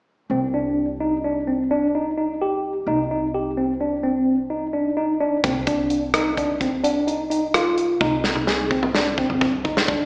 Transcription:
0.30 upright bass C2, tine electric piano C4
0.54 tine electric piano D4
1.00 tine electric piano D#4
1.25 tine electric piano D4
1.48 tine electric piano C4
1.71 tine electric piano D4
1.95 tine electric piano D#4
2.18 tine electric piano D#4
2.42 tine electric piano G4
2.87 upright bass C2, tine electric piano D#4
3.11 tine electric piano D#4
3.35 tine electric piano G4
3.57 tine electric piano C4
3.81 tine electric piano D4
4.03 tine electric piano C4
4.50 tine electric piano D#4
4.73 tine electric piano D4
4.97 tine electric piano D#4
5.21 tine electric piano D4
5.44 upright bass C2, tine electric piano C4, kick, closed hi-hat
5.67 tine electric piano D4, kick, closed hi-hat
5.90 closed hi-hat
6.14 tine electric piano D#4, cross-stick, closed hi-hat
6.37 tine electric piano D4, kick, closed hi-hat
6.61 tine electric piano C4, kick, closed hi-hat
6.84 tine electric piano D4, closed hi-hat
7.07 tine electric piano D#4, closed hi-hat
7.30 tine electric piano D#4, closed hi-hat
7.54 tine electric piano F4, cross-stick, closed hi-hat
7.78 closed hi-hat
8.01 upright bass C2, tine electric piano D#4, kick, high tom
8.24 tine electric piano D#4, snare
8.36 high tom
8.47 tine electric piano G#4, snare
8.71 tine electric piano C4, kick
8.83 mid tom
8.95 tine electric piano D4, snare
9.18 tine electric piano C4, kick
9.30 mid tom
9.41 kick, mid tom
9.64 tine electric piano D#4, kick
9.77 snare
9.88 tine electric piano D4, kick

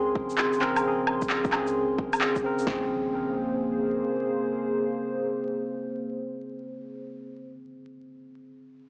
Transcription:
Already playing: sub bass C#2, tine electric piano C#3 C4 G#4 A#4, analog synth pad G#4 C6
0.15 sub bass F1, kick
0.30 shaker
0.38 clap
0.53 shaker
0.59 sub bass A#1, tine electric piano C#3 C4, clap
0.63 tine electric piano A#4
0.76 tine electric piano C#3, low woodblock, shaker
0.84 tine electric piano C4 G#4
1.07 low woodblock
1.22 kick, shaker
1.30 clap
1.44 kick, shaker
1.49 sub bass C#2, tine electric piano C#3 C4, clap, low woodblock
1.57 tine electric piano G#4
1.67 shaker
1.98 kick
2.13 low woodblock, shaker
2.21 clap
2.36 kick, shaker
2.43 sub bass F1, tine electric piano C#3 C4 A#4
2.59 tine electric piano C#3, shaker
2.67 sub bass A#1, analog synth pad A#3 G#4 C5, tine electric piano C4, kick, snare, impact
2.73 tine electric piano G#4

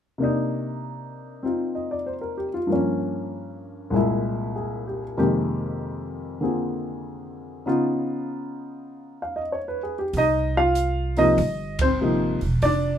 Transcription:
0.18 grand piano C3 A#3 D4
0.24 grand piano D#4
1.43 grand piano C4 D#4 F4
1.75 grand piano D#5
1.91 grand piano D5
2.06 grand piano C5
2.21 grand piano A#4
2.37 grand piano G4
2.54 grand piano F4
2.67 grand piano G2 F3 A#3
2.72 grand piano C#4
3.90 grand piano C2 A#2 G#3
3.96 grand piano E4
4.56 grand piano G#4
4.87 grand piano G4
5.18 grand piano F2 C3 D#3 G#3 A#3 G4
6.41 grand piano D3 A#3 C4 F4 G#4
7.66 grand piano C#3 B3 D#4 F4
9.22 grand piano F5
9.36 grand piano D#5
9.52 grand piano C#5
9.68 grand piano B4
9.83 grand piano G#4
9.99 grand piano G4
10.13 upright bass C2, grand piano D#4, kick, open hi-hat
10.18 grand piano D#5
10.57 grand piano F4 F5
10.75 closed hi-hat
11.16 grand piano C3 F3 A#3 D#4 D#5, open hi-hat
11.38 upright bass G1, kick, open hi-hat
11.79 grand piano C5, kick, ride
11.83 grand piano C4
12.01 grand piano C3 F3 A#3 D#4
12.41 upright bass E1, open hi-hat
12.62 upright bass F1, grand piano D4 D5, kick, open hi-hat

